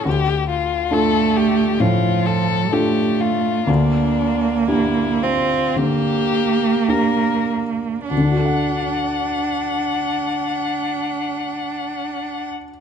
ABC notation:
X:1
M:4/4
L:1/8
Q:1/4=55
K:Gdor
V:1 name="Violin"
G F A G F A G F | D2 E F G2 B z | ^f8 |]
V:2 name="Grand piano"
D,,2 [DFA]2 A,,2 [DFA]2 | D,,2 [DG]2 D,2 [DG]2 | [D,,D,D^FA^f]8 |]
V:3 name="Cello"
z2 A,2 F,2 A,2 | B,3 C B,4 | D8 |]